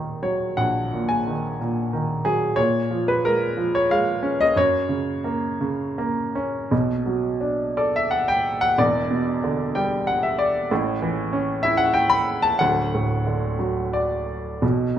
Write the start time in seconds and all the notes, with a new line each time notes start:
Already playing: D#2 A#2 D#3 D#5 F5
0.23 F#3 C#5
0.57 A#1 F#5
0.93 A#2
1.09 G#5
1.27 D#3
1.61 A#2
1.93 D#3
2.25 F#3 G#4
2.56 A#2 C#5
2.91 F3
3.08 B4
3.25 G#3 A#4
3.57 F3
3.75 C#5
3.90 G#3 F5
4.23 C#4
4.41 D#5
4.56 F#2 C#5
4.89 C#3
5.24 A#3
5.61 C#3
5.98 A#3
6.35 C#4
6.71 B1 B2
7.06 F#3
7.41 D4
7.77 A4 D5
7.96 E5
8.11 F#5
8.28 G5
8.61 F#5
8.78 E1 E2 D5
9.11 B2
9.44 D3
9.75 G3 G5
10.07 F#5
10.23 E5
10.39 D5
10.71 A1 A2
11.02 E3
11.33 C#4
11.63 E4 E5
11.77 F#5
11.94 G5
12.10 B5
12.42 A5
12.59 D1 D2 F#5
12.94 A2
13.27 D3
13.59 F#3
13.93 D5
14.62 B1 B2